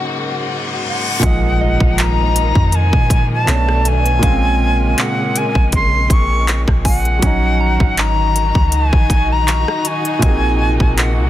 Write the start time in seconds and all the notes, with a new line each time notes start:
Already playing: G#2 C#3 F#3 G#3 A#3 C#4 F#4 A#4, reverse cymbal
0.87 F#5
1.19 A#1 A#2 D#3 F3 G#3 A#3 D#4, kick, closed hi-hat, impact
1.24 F3 D#5
1.61 D#5
1.80 A#1, kick
1.98 A#5, clap, closed hi-hat
2.36 closed hi-hat
2.55 F2, kick
2.72 G#5, closed hi-hat
2.93 A#2, kick
3.10 kick, closed hi-hat
3.33 A5
3.46 B1 B2 A3 B3 C#4 D4 C#5, clap, closed hi-hat
3.55 D4
3.69 cross-stick
3.85 G#5, closed hi-hat
4.06 closed hi-hat
4.19 A#1 A#2 C#3 G#3 A#3, kick, closed hi-hat
4.23 C4 C#4 F5
4.98 F#5, clap, closed hi-hat
5.36 G#5, closed hi-hat
5.55 A#1, kick
5.72 C6, kick, closed hi-hat
6.10 A#1 C#6, kick, closed hi-hat
6.48 clap, closed hi-hat
6.68 A#1, kick, cross-stick
6.85 F#5 G#5, kick, closed hi-hat, open hi-hat
7.05 closed hi-hat
7.19 D#3 F#3 C#4 D#4 F#4, kick, closed hi-hat
7.26 D#4
7.60 A#5
7.80 G#1, kick
7.97 A#5, clap, closed hi-hat
8.36 closed hi-hat
8.55 C#2, kick
8.72 G#5, closed hi-hat
8.93 A#1, kick
9.10 kick, closed hi-hat
9.32 A#5
9.47 C#6, clap, closed hi-hat
9.68 cross-stick
9.85 G#5, closed hi-hat
10.05 closed hi-hat
10.19 A#1 A#2 C3 A#3 C4 F#4, kick, closed hi-hat
10.24 D#4 G#4
10.80 A#1, kick
10.98 F#5, clap, closed hi-hat
11.18 C2